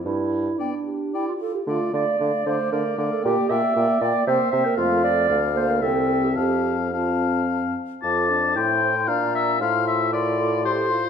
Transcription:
<<
  \new Staff \with { instrumentName = "Flute" } { \time 3/4 \key g \mixolydian \tempo 4 = 114 r4 g''4 g''4 | \key f \major f''8 f''8 f''8 f''8 f''8 f''8 | g''8 g''8 g''8 g''8 g''8 g''8 | f''4 f''4 g''4 |
a''4 a''4. r8 | d'''4 c'''4 bes''4 | c'''4 c'''4 c'''4 | }
  \new Staff \with { instrumentName = "Oboe" } { \time 3/4 \key g \mixolydian r4 d''4 d''4 | \key f \major d''8 d''8 d''8 d''8 d''8 d''8 | d''8 d''8 d''8 d''8 e''8 e''8 | f''4 f''4 e''4 |
f''4 f''4. r8 | a''4 g''4 f''8 e''8 | f''8 e''8 d''4 c''4 | }
  \new Staff \with { instrumentName = "Clarinet" } { \time 3/4 \key g \mixolydian e'4 d'4 e'16 f'16 a'16 g'16 | \key f \major f'8 d''4 c''8 bes'8. a'16 | g'8 e''4 d''8 c''8. bes'16 | f'8 d''4 c''16 bes'16 a'8. g'16 |
g'8. r16 f'4 r4 | a'4 c''8 c''8 d''4 | c''4 bes'8 a'4. | }
  \new Staff \with { instrumentName = "French horn" } { \time 3/4 \key g \mixolydian r4 b8 g'4 f'8 | \key f \major a8 a8 a8 a8 a8 a8 | bes8 bes8 bes8 bes8 bes8 bes8 | a4 a8 bes8 c'4 |
c'4 c'4. r8 | f'8 d'8 e'4 d'4 | f'2 g'8 f'8 | }
  \new Staff \with { instrumentName = "Bassoon" } { \clef bass \time 3/4 \key g \mixolydian g,4 r2 | \key f \major d8 d8 d8 d8 d8 d8 | bes,8 bes,8 bes,8 bes,8 c8 c8 | f,4 d,4 c,4 |
f,2~ f,8 r8 | f,4 a,4 bes,4 | a,2. | }
>>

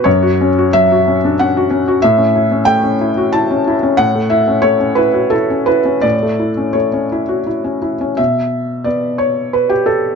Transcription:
\new Staff \with { instrumentName = "Felt piano" } { \time 3/4 \key b \minor \tempo 4 = 89 << { cis''4 e''4 fis''4 | e''4 g''4 a''4 | fis''8 e''8 cis''8 b'8 a'8 b'8 | d''4 cis''4 r4 |
e''4 d''8 cis''8 b'16 g'16 a'8 | } \\ { fis,16 fis'16 cis'16 fis'16 fis16 fis'16 cis'16 d'16 cis'16 fis'16 cis'16 fis'16 | a,16 cis'16 e'16 cis'16 a16 cis'16 e'16 fis'16 e'16 cis'16 e'16 cis'16 | a,16 a16 e'16 cis'16 a16 cis'16 e'16 fis'16 e'16 cis'16 e'16 cis'16 | a,16 a16 e'16 cis'16 a16 cis'16 e'16 fis'16 e'16 cis'16 e'16 cis'16 |
b,4 b2 | } >> }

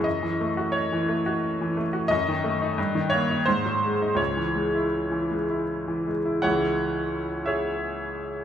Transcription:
<<
  \new Staff \with { instrumentName = "Grand piano" } { \time 3/4 \key cis \minor \tempo 4 = 87 dis''4 cis''4. r8 | dis''4. cis''8 bis'4 | cis''2~ cis''8 r8 | <cis'' fis''>4. <gis' cis'' e''>4. | }
  \new Staff \with { instrumentName = "Grand piano" } { \clef bass \time 3/4 \key cis \minor fis,16 e16 a16 fis'8 e16 a16 fis'8 e16 a16 fis'16 | fis,16 dis16 a16 dis'16 g,16 dis16 ais16 dis'16 gis,16 fis16 gis16 dis'16 | cis,16 e16 gis16 e'8 e16 gis16 e'8 e16 gis16 e'16 | <cis, e gis e'>2. | }
>>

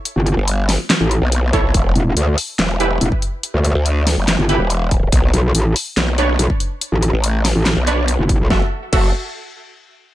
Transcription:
<<
  \new Staff \with { instrumentName = "Synth stab" } { \time 4/4 \key fis \phrygian \tempo 4 = 142 r2. r8 <e' a' cis''>8 | r2 r8 <e' g' b'>8 r4 | r2 r8 <e' g' b'>8 r4 | r2 r8 <d' b' cis''>8 r4 |
r2 r8 <d' b' cis''>8 r4 | <fis' a' e''>8 r8 <fis' a' e''>8 r2 r8 | }
  \new Staff \with { instrumentName = "Wobble bass" } { \clef bass \time 4/4 \key fis \phrygian r16 g,,8 r4. a,,8 r4 r16 | r8 e,,8 d,8 r4. e,,16 r8. | r16 d,8 r4. g,,8 r4 r16 | r8 b,,8 a,,8 r4. b,,16 r8. |
r16 a,,8 r4 a,,8 r4 fis,,8 b,,16 | r1 | }
  \new Staff \with { instrumentName = "Wobble bass" } { \clef bass \time 4/4 \key fis \phrygian r8. g,,4 r4 b,,4~ b,,16 | e,,8 r4. e,,4 r4 | r8. d,4 fis,,8 r8 e,,4~ e,,16 | b,,8 r4. b,,4 r4 |
r8. a,,4 r8 b,,4 r8. | fis,,16 r8. fis,,8 r2 r8 | }
  \new DrumStaff \with { instrumentName = "Drums" } \drummode { \time 4/4 hh8 hh8 hh8 <hho sn>8 <hc hh sn>8 hh8 hh8 <hh bd>8 | <hh bd>8 hh8 hh8 hho8 <hc hh sn>8 hh8 hh16 bd16 hh8 | hh8 hh8 hh8 <hho sn>8 <hc hh sn>8 hh8 hh8 <hh bd>8 | <hh bd>8 hh8 hh8 hho8 <hc hh sn>8 hh8 hh16 bd16 hh8 |
hh8 hh8 hh8 <hho sn>8 <hc hh sn>8 hh8 hh8 <hh bd>8 | <bd sn>4 <cymc bd>4 r4 r4 | }
>>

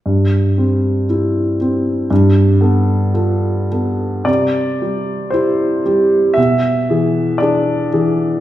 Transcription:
\new Staff \with { instrumentName = "Grand piano" } { \time 4/4 \key c \major \tempo 4 = 58 << { r1 | d''4 c''4 e''4 d''4 | } \\ { g,8 <c' g'>8 <e' g'>8 <c' g'>8 g,8 <b a'>8 <f' a'>8 <b a'>8 | c8 <g g'>8 <e' g'>8 <g g'>8 b,8 <e gis'>8 <d' gis'>8 <e gis'>8 | } >> }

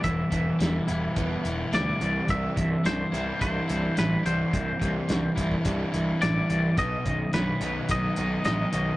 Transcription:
<<
  \new Staff \with { instrumentName = "Clean electric guitar" } { \time 4/4 \key c \lydian \tempo 4 = 107 e''4 r2 d''4 | e''4 c''4 c''4 b'8 c''8~ | c''2. d''4 | dis''4 b'4 dis''4 dis''4 | }
  \new Staff \with { instrumentName = "Overdriven electric guitar" } { \clef bass \time 4/4 \key c \lydian <e g b e'>8 e8 g8 e'8 b8 e'8 g8 c8 | c8 e8 g8 e'8 d'8 e'8 g8 e8 | c8 e8 g8 e'8 d'8 e'8 g8 e8 | b,8 dis8 fis8 dis'8 b8 dis'8 fis8 dis8 | }
  \new Staff \with { instrumentName = "Overdriven electric guitar" } { \clef bass \time 4/4 \key c \lydian <e, b,>8 <e, b, e>8 <e, b,>8 <e, b,>8 <e, b, e>8 <e, b,>8 <e, b,>8 <c e g>8 | <c e g>8 <c e>8 <c e>8 <c e g>8 <c e>8 <c e>8 <c e>8 <c e g>8 | <c e>8 <c e g>8 <c e>8 <c e>8 <c e g>8 <c e>8 <c e>8 <c e>8 | <b, fis b>8 <b, fis>8 <b, fis>8 <b, fis b>8 <b, fis>8 <b, fis>8 <b, fis>8 <b, fis b>8 | }
  \new Staff \with { instrumentName = "Picked electric bass" } { \clef bass \time 4/4 \key c \lydian e,,8 e,,8 e,,8 e,,8 e,,8 e,,8 d,8 c,8 | c,8 c,8 c,8 c,8 c,8 c,8 a,,8 c,8 | c,8 c,8 c,8 c,8 c,8 c,8 a,,8 c,8 | b,,8 b,,8 b,,8 b,,8 b,,8 b,,8 a,,8 b,,8 | }
  \new DrumStaff \with { instrumentName = "Drums" } \drummode { \time 4/4 <hh bd>8 <hh bd>8 <hh sn>8 hh8 <hh bd>8 hh8 <hh sn>8 hh8 | <hh bd>8 <hh bd>8 <hh sn>8 hh8 <hh bd>8 hh8 <hh sn>8 hh8 | <hh bd>8 <hh bd>8 <hh sn>8 <hh bd>16 bd16 <hh bd>8 hh8 <hh sn>8 hh8 | <hh bd>8 <hh bd>8 <hh sn>8 hh8 <hh bd>8 hh8 <hh sn>8 hh8 | }
>>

